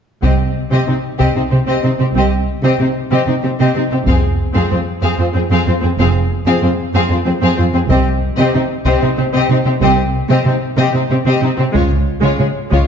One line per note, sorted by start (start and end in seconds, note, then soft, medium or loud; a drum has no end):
0.23 0.38 C2 soft
0.23 0.29 C3 soft
0.23 0.38 C4 soft
0.23 0.38 G4 soft
0.23 0.39 D#5 soft
0.23 taiko soft
0.71 0.78 C3 soft
0.71 0.86 C4 soft
0.71 0.86 G4 soft
0.71 0.87 D#5 soft
0.87 0.94 C3 soft
0.87 0.93 C4 soft
0.87 0.94 D#4 soft
0.87 0.95 C5 soft
1.19 1.26 C3 soft
1.19 1.34 C4 soft
1.19 1.34 G4 soft
1.19 1.35 D#5 soft
1.19 taiko soft
1.35 1.42 C3 soft
1.35 1.41 C4 soft
1.35 1.42 D#4 soft
1.35 1.43 C5 soft
1.51 1.58 C3 soft
1.51 1.57 C4 soft
1.51 1.58 C4 soft
1.51 1.59 G4 soft
1.67 1.74 C3 soft
1.67 1.82 C4 soft
1.67 1.83 G4 soft
1.67 1.83 D#5 soft
1.83 1.90 C3 soft
1.83 1.90 C4 soft
1.83 1.91 D#4 soft
1.83 1.91 C5 soft
1.99 2.06 C3 soft
1.99 2.06 C4 soft
1.99 2.07 C4 soft
1.99 2.07 G4 soft
2.15 2.31 C2 soft
2.15 2.22 C3 soft
2.15 2.30 C4 soft
2.15 2.31 G4 soft
2.15 2.32 D#5 soft
2.63 2.70 C3 soft
2.63 2.79 C4 soft
2.63 2.79 G4 soft
2.63 2.79 D#5 soft
2.79 2.86 C3 soft
2.79 2.86 C4 soft
2.79 2.87 D#4 soft
2.79 2.88 C5 soft
3.11 3.18 C3 soft
3.11 3.26 C4 soft
3.11 3.27 G4 soft
3.11 3.27 D#5 soft
3.27 3.34 C3 soft
3.27 3.34 C4 soft
3.27 3.35 D#4 soft
3.27 3.34 C5 soft
3.43 3.50 C3 soft
3.43 3.50 C4 soft
3.43 3.50 G4 soft
3.59 3.66 C3 soft
3.59 3.74 C4 soft
3.59 3.75 G4 soft
3.59 3.74 D#5 soft
3.75 3.82 C3 soft
3.75 3.82 C4 soft
3.75 3.83 D#4 soft
3.75 3.82 C5 soft
3.91 3.98 C3 soft
3.91 3.97 C4 soft
3.91 3.99 C4 soft
3.91 3.98 G4 soft
4.07 4.22 F1 soft
4.07 4.13 F2 soft
4.07 4.22 C4 soft
4.07 4.23 G#4 soft
4.07 4.22 F5 soft
4.07 taiko soft
4.54 4.61 F2 soft
4.54 4.69 C4 soft
4.54 4.71 G#4 soft
4.54 4.70 F5 soft
4.70 4.77 F2 soft
4.70 4.77 C4 soft
4.70 4.79 F4 soft
4.70 4.77 C5 soft
5.02 5.09 F2 soft
5.02 5.17 C4 soft
5.02 5.18 G#4 soft
5.02 5.18 F5 soft
5.18 5.25 F2 soft
5.18 5.25 C4 soft
5.18 5.26 F4 soft
5.18 5.25 C5 soft
5.34 5.41 F2 soft
5.34 5.40 C4 soft
5.34 5.42 C4 soft
5.34 5.42 G#4 soft
5.50 5.57 F2 soft
5.50 5.65 C4 soft
5.50 5.66 G#4 soft
5.50 5.66 F5 soft
5.66 5.73 F2 soft
5.66 5.73 C4 soft
5.66 5.74 F4 soft
5.66 5.73 C5 soft
5.82 5.89 F2 soft
5.82 5.88 C4 soft
5.82 5.90 C4 soft
5.82 5.89 G#4 soft
5.98 6.14 F1 soft
5.98 6.05 F2 soft
5.98 6.13 C4 soft
5.98 6.14 G#4 soft
5.98 6.13 F5 soft
6.46 6.52 F2 soft
6.46 6.61 C4 soft
6.46 6.62 G#4 soft
6.46 6.62 F5 soft
6.62 6.69 F2 soft
6.62 6.69 C4 soft
6.62 6.69 F4 soft
6.62 6.69 C5 soft
6.94 7.01 F2 soft
6.94 7.09 C4 soft
6.94 7.10 G#4 soft
6.94 7.10 F5 soft
7.10 7.17 F2 soft
7.10 7.17 C4 soft
7.10 7.18 F4 soft
7.10 7.18 C5 soft
7.25 7.32 F2 soft
7.25 7.32 C4 soft
7.25 7.33 C4 soft
7.25 7.33 G#4 soft
7.42 7.49 F2 soft
7.42 7.56 C4 soft
7.42 7.58 G#4 soft
7.42 7.57 F5 soft
7.58 7.64 F2 soft
7.58 7.64 C4 soft
7.58 7.65 F4 soft
7.58 7.64 C5 soft
7.74 7.80 F2 soft
7.74 7.80 C4 soft
7.74 7.81 C4 soft
7.74 7.81 G#4 soft
7.90 8.05 C2 medium
7.90 7.96 C3 soft
7.90 8.05 C4 medium
7.90 8.05 G4 soft
7.90 8.05 D#5 soft
7.90 taiko soft
8.37 8.44 C3 medium
8.37 8.53 C4 soft
8.37 8.53 G4 soft
8.37 8.52 D#5 soft
8.54 8.60 C3 soft
8.54 8.60 C4 soft
8.54 8.61 D#4 soft
8.54 8.61 C5 soft
8.85 8.93 C3 medium
8.85 9.00 C4 medium
8.85 9.01 G4 medium
8.85 9.01 D#5 soft
8.85 taiko soft
9.01 9.08 C3 soft
9.01 9.08 C4 soft
9.01 9.09 D#4 soft
9.01 9.08 C5 soft
9.18 9.24 C3 soft
9.18 9.24 C4 soft
9.18 9.25 C4 soft
9.18 9.24 G4 soft
9.34 9.40 C3 medium
9.34 9.49 C4 soft
9.34 9.49 G4 medium
9.34 9.49 D#5 medium
9.49 9.56 C3 soft
9.49 9.56 C4 soft
9.49 9.57 D#4 soft
9.49 9.57 C5 soft
9.65 9.72 C3 soft
9.65 9.72 C4 soft
9.65 9.73 C4 soft
9.65 9.73 G4 soft
9.81 9.97 C2 medium
9.81 9.88 C3 medium
9.81 9.97 C4 soft
9.81 9.97 G4 medium
9.81 9.97 D#5 soft
10.29 10.36 C3 medium
10.29 10.45 C4 soft
10.29 10.45 G4 medium
10.29 10.45 D#5 soft
10.45 10.52 C3 soft
10.45 10.53 C4 soft
10.45 10.54 D#4 soft
10.45 10.53 C5 soft
10.78 10.84 C3 medium
10.78 10.92 C4 soft
10.78 10.94 G4 medium
10.78 10.93 D#5 medium
10.93 11.01 C3 soft
10.93 11.00 C4 soft
10.93 11.02 D#4 soft
10.93 11.01 C5 soft
11.10 11.17 C3 soft
11.10 11.17 C4 soft
11.10 11.18 C4 soft
11.10 11.17 G4 soft
11.26 11.32 C3 medium
11.26 11.41 C4 soft
11.26 11.42 G4 medium
11.26 11.42 D#5 medium
11.42 11.48 C3 soft
11.42 11.49 C4 soft
11.42 11.51 D#4 soft
11.42 11.50 C5 soft
11.57 11.65 C3 soft
11.57 11.64 C4 soft
11.57 11.67 C4 soft
11.57 11.65 G4 soft
11.73 11.90 C#2 medium
11.73 11.80 C#3 soft
11.73 11.89 G#3 soft
11.73 11.90 F4 medium
11.73 11.90 C#5 medium
11.73 taiko soft
12.21 12.29 C#3 medium
12.21 12.36 G#3 soft
12.21 12.39 F4 soft
12.21 12.38 C#5 soft
12.38 12.45 C#3 soft
12.38 12.45 G#3 soft
12.38 12.46 C#4 soft
12.38 12.46 G#4 soft
12.70 12.78 C#3 soft
12.70 12.86 G#3 soft
12.70 12.87 F4 soft
12.70 12.87 C#5 soft
12.70 taiko soft